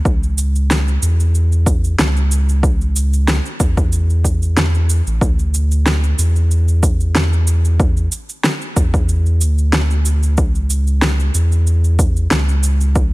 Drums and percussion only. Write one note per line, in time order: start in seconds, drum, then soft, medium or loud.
0.05 kick loud
0.05 cabasa soft
0.23 cabasa soft
0.38 cabasa medium
0.56 cabasa soft
0.71 snare medium
0.71 cabasa soft
0.88 cabasa soft
1.03 cabasa medium
1.20 cabasa soft
1.35 cabasa soft
1.52 cabasa soft
1.66 kick loud
1.66 cabasa medium
1.84 cabasa soft
1.99 snare loud
1.99 cabasa soft
2.17 cabasa soft
2.31 cabasa medium
2.49 cabasa soft
2.63 kick loud
2.63 cabasa soft
2.81 cabasa soft
2.96 cabasa medium
3.13 cabasa soft
3.28 snare medium
3.28 cabasa soft
3.46 cabasa soft
3.60 kick loud
3.60 cabasa medium
3.77 kick loud
3.77 cabasa soft
3.92 cabasa soft
4.10 cabasa soft
4.25 kick medium
4.25 cabasa medium
4.42 cabasa soft
4.57 snare medium
4.57 cabasa soft
4.74 cabasa soft
4.90 cabasa medium
5.07 cabasa soft
5.21 kick loud
5.21 cabasa soft
5.39 cabasa soft
5.54 cabasa medium
5.72 cabasa soft
5.86 snare medium
5.86 cabasa soft
6.04 cabasa soft
6.19 cabasa medium
6.36 cabasa soft
6.51 cabasa soft
6.68 cabasa soft
6.83 kick medium
6.83 cabasa medium
7.00 cabasa soft
7.15 snare medium
7.15 cabasa soft
7.33 cabasa soft
7.47 cabasa medium
7.65 cabasa soft
7.80 kick loud
7.80 cabasa soft
7.97 cabasa soft
8.12 cabasa medium
8.29 cabasa soft
8.44 snare medium
8.44 cabasa soft
8.61 cabasa soft
8.76 kick medium
8.76 cabasa medium
8.94 kick loud
8.94 cabasa soft
9.09 cabasa soft
9.26 cabasa soft
9.41 cabasa medium
9.58 cabasa soft
9.73 snare medium
9.73 cabasa soft
9.90 cabasa soft
10.05 cabasa medium
10.23 cabasa soft
10.37 kick loud
10.37 cabasa soft
10.55 cabasa soft
10.70 cabasa medium
10.87 cabasa soft
11.02 snare loud
11.02 cabasa soft
11.20 cabasa soft
11.35 cabasa medium
11.52 cabasa soft
11.67 cabasa soft
11.84 cabasa soft
11.99 kick medium
11.99 cabasa medium
12.16 cabasa soft
12.31 snare medium
12.31 cabasa soft
12.49 cabasa soft
12.63 cabasa medium
12.81 cabasa soft
12.95 kick loud
12.95 cabasa soft